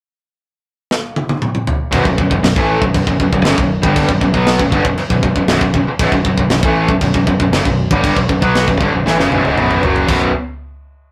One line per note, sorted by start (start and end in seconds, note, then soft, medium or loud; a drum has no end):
0.91 snare medium
1.16 high tom medium
1.29 high tom medium
1.42 mid tom medium
1.55 mid tom medium
1.67 floor tom loud
1.92 2.04 B0 medium
1.92 2.04 B1 medium
1.92 2.04 F#2 loud
1.92 kick loud
1.92 crash medium
2.05 2.17 B0 medium
2.05 2.16 B1 medium
2.05 2.17 F#2 medium
2.05 kick medium
2.17 2.30 B0 medium
2.17 2.29 B1 medium
2.17 2.29 F#2 medium
2.17 kick medium
2.30 2.42 B0 medium
2.30 2.42 B1 medium
2.30 2.42 F#2 medium
2.30 kick medium
2.43 2.55 B0 medium
2.43 2.56 B1 medium
2.43 2.56 F#2 medium
2.43 snare loud
2.43 crash medium
2.56 2.80 A1 medium
2.56 2.81 A2 loud
2.56 2.81 E3 loud
2.56 2.81 A3 loud
2.56 kick loud
2.81 2.93 B0 medium
2.81 2.93 B1 medium
2.81 2.93 F#2 medium
2.81 kick loud
2.94 3.06 B0 medium
2.94 3.06 B1 medium
2.94 3.06 F#2 medium
2.94 kick loud
2.94 crash medium
3.07 3.19 B0 medium
3.07 3.19 B1 medium
3.07 3.19 F#2 medium
3.07 kick medium
3.20 3.32 B0 medium
3.20 3.31 B1 medium
3.20 3.32 F#2 medium
3.20 kick medium
3.32 3.44 B0 medium
3.32 3.44 B1 medium
3.32 3.43 F#2 medium
3.32 kick medium
3.44 3.57 F#1 medium
3.44 3.57 F#2 medium
3.44 3.57 C#3 medium
3.44 snare loud
3.44 crash medium
3.57 3.82 B0 medium
3.57 3.78 B1 medium
3.57 3.78 F#2 medium
3.57 kick medium
3.82 4.07 G1 loud
3.82 4.07 G2 medium
3.82 4.08 D3 loud
3.82 4.08 G3 loud
3.82 kick loud
3.96 kick loud
3.96 crash medium
4.08 4.21 B0 medium
4.08 4.19 B1 medium
4.08 4.19 F#2 medium
4.08 kick medium
4.20 4.33 B0 medium
4.20 4.34 B1 medium
4.20 4.33 F#2 medium
4.20 kick medium
4.34 4.58 B1 medium
4.34 4.59 B2 medium
4.34 4.59 F#3 loud
4.34 4.59 B3 medium
4.34 kick medium
4.47 snare loud
4.47 crash medium
4.59 4.71 B0 medium
4.59 4.71 B1 medium
4.59 4.72 F#2 medium
4.59 kick medium
4.72 4.84 G1 loud
4.72 4.84 G2 medium
4.72 4.84 D3 loud
4.72 kick medium
4.85 4.97 B0 medium
4.85 4.97 B1 medium
4.85 4.98 F#2 medium
4.85 kick medium
4.98 muted fingered electric bass stroke soft
4.98 muted distorted electric guitar stroke medium
4.98 crash medium
5.10 5.22 B0 medium
5.10 5.22 B1 medium
5.10 5.22 F#2 medium
5.10 kick medium
5.23 5.35 B0 medium
5.23 5.35 B1 medium
5.23 5.36 F#2 medium
5.23 kick medium
5.36 5.47 B0 medium
5.36 5.48 B1 medium
5.36 5.49 F#2 medium
5.36 kick medium
5.48 5.60 B0 medium
5.48 5.61 B1 medium
5.48 5.61 F#2 loud
5.48 snare loud
5.48 crash medium
5.61 5.73 B0 medium
5.61 5.74 B1 medium
5.61 5.74 F#2 medium
5.61 kick medium
5.74 5.86 B0 medium
5.74 5.87 B1 medium
5.74 5.87 F#2 medium
5.74 kick medium
5.87 muted fingered electric bass stroke soft
5.87 muted distorted electric guitar stroke medium
5.99 6.11 B0 medium
5.99 6.12 B1 loud
5.99 6.12 F#2 loud
5.99 kick loud
5.99 crash medium
6.12 6.24 B0 medium
6.12 6.25 B1 medium
6.12 6.25 F#2 medium
6.12 kick medium
6.25 6.37 B0 medium
6.25 6.38 B1 medium
6.25 6.38 F#2 medium
6.25 kick medium
6.38 6.50 B0 medium
6.38 6.50 B1 medium
6.38 6.51 F#2 medium
6.38 kick medium
6.50 6.62 B0 medium
6.50 6.64 B1 medium
6.50 6.64 F#2 medium
6.50 snare loud
6.50 crash medium
6.63 6.87 A1 medium
6.63 6.89 A2 loud
6.63 6.89 E3 loud
6.63 6.89 A3 loud
6.63 kick loud
6.88 7.00 B0 medium
6.88 7.01 B1 medium
6.88 7.02 F#2 medium
6.88 kick medium
7.01 7.13 B0 medium
7.01 7.14 B1 medium
7.01 7.14 F#2 medium
7.01 kick medium
7.01 crash medium
7.14 7.26 B0 medium
7.14 7.26 B1 medium
7.14 7.26 F#2 medium
7.14 kick medium
7.27 7.39 B0 medium
7.27 7.39 B1 medium
7.27 7.39 F#2 medium
7.27 kick medium
7.40 7.51 B0 medium
7.40 7.52 B1 medium
7.40 7.52 F#2 medium
7.40 kick medium
7.52 7.64 F#1 medium
7.52 7.65 F#2 loud
7.52 7.65 C#3 loud
7.52 snare loud
7.52 crash medium
7.65 7.89 B0 medium
7.65 7.86 B1 medium
7.65 7.86 F#2 medium
7.65 kick medium
7.91 8.15 G1 loud
7.91 8.16 G2 medium
7.91 8.16 D3 loud
7.91 8.16 G3 loud
7.91 kick loud
8.04 kick medium
8.04 crash medium
8.16 8.28 B0 medium
8.16 8.28 B1 medium
8.16 8.29 F#2 medium
8.16 kick medium
8.29 8.41 B0 medium
8.29 8.42 B1 medium
8.29 8.42 F#2 medium
8.29 kick medium
8.42 8.66 B1 medium
8.42 8.67 B2 medium
8.42 8.67 F#3 loud
8.42 8.67 B3 medium
8.42 kick medium
8.55 snare loud
8.55 crash medium
8.68 8.80 B0 medium
8.68 8.80 B1 medium
8.68 8.81 F#2 medium
8.68 kick medium
8.80 8.92 G1 loud
8.80 8.93 G2 loud
8.80 8.93 D3 loud
8.80 kick medium
8.93 9.05 B0 medium
8.93 9.06 B1 medium
8.93 9.06 F#2 medium
9.06 9.18 A1 loud
9.06 9.18 A2 loud
9.06 9.18 E3 loud
9.06 snare medium
9.18 9.31 F#1 medium
9.18 9.31 F#2 loud
9.18 9.31 C#3 loud
9.18 snare medium
9.31 9.44 B0 loud
9.31 9.43 B1 medium
9.31 9.44 F#2 loud
9.31 high tom medium
9.44 9.56 C#1 medium
9.44 9.56 C#2 medium
9.44 9.56 G#2 loud
9.44 high tom medium
9.56 9.81 B0 medium
9.56 9.82 B1 medium
9.56 9.81 F#2 loud
9.56 9.82 B2 loud
9.56 mid tom medium
9.71 mid tom medium
9.82 10.07 F#1 medium
9.82 10.06 F#2 medium
9.82 10.07 C#3 medium
9.82 10.08 F#3 medium
9.82 floor tom loud
9.96 floor tom medium
10.07 10.32 B0 medium
10.07 10.28 B1 medium
10.07 10.29 F#2 medium
10.07 10.29 B2 loud
10.07 kick loud
10.07 crash loud